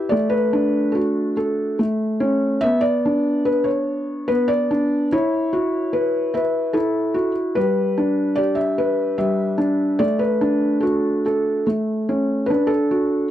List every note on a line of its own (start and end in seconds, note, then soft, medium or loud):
0.00 0.12 E4 medium
0.00 0.11 G4 medium
0.00 0.11 B4 medium
0.00 0.14 E5 medium
0.09 1.78 A3 medium
0.09 0.32 D5 medium
0.30 0.95 B4 medium
0.53 1.79 D4 medium
0.92 1.79 F#4 medium
0.92 1.35 A4 medium
1.37 1.79 A4 medium
1.79 2.64 A3 medium
2.20 2.63 C#4 medium
2.61 4.28 B3 medium
2.61 2.82 E5 loud
2.81 3.47 D5 medium
3.05 4.69 D4 medium
3.45 3.67 B4 medium
3.64 4.30 C#5 medium
4.28 5.12 B3 medium
4.28 4.50 B4 medium
4.48 5.07 D5 medium
4.71 5.12 D4 medium
5.12 6.72 E4 medium
5.12 6.39 C#5 medium
5.53 7.13 F#4 medium
5.93 6.33 B4 medium
6.34 6.77 B4 medium
6.34 7.56 E5 medium
6.73 7.56 E4 medium
6.73 7.31 A4 medium
7.14 7.56 F#4 medium
7.55 9.17 G3 medium
7.55 8.39 B4 medium
7.98 9.56 D4 medium
8.36 10.00 G4 medium
8.36 8.57 D5 medium
8.55 9.16 E5 medium
8.78 10.00 B4 medium
9.18 10.00 G3 medium
9.18 10.02 E5 medium
9.58 9.99 D4 medium
9.99 11.65 A3 medium
9.99 10.21 D5 medium
10.19 10.83 B4 medium
10.41 11.65 D4 medium
10.80 11.66 F#4 medium
10.80 11.24 A4 medium
11.26 11.66 A4 medium
11.67 12.50 A3 medium
12.09 12.50 C#4 medium
12.46 12.70 B4 medium
12.50 13.31 D4 medium
12.67 13.28 A4 medium
12.91 13.31 F#4 medium